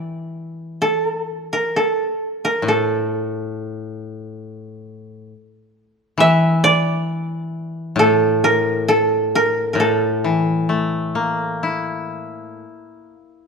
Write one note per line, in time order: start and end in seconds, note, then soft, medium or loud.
0.00 1.73 E3 medium
0.00 0.99 D5 medium
0.00 0.84 E5 medium
0.00 0.64 G5 soft
0.00 0.53 A5 soft
0.00 0.45 A#5 soft
0.82 1.59 A4 medium
1.53 1.82 A#4 medium
1.76 2.51 A4 medium
2.45 2.74 A#4 medium
2.62 5.31 A2 medium
2.68 5.73 A4 medium
6.18 8.88 E3 medium
6.18 7.70 E5 loud
6.64 7.52 D5 loud
7.52 8.24 A#4 loud
7.96 9.74 A2 medium
7.96 8.50 A4 loud
8.44 8.94 A#4 medium
8.88 9.41 A4 medium
9.35 9.73 A#4 medium
9.73 12.61 A2 medium
9.73 9.86 A#4 medium
9.80 12.59 A4 medium
10.24 12.12 E3 soft
10.69 12.62 A3 soft
11.15 13.13 A#3 soft
11.63 13.47 E4 soft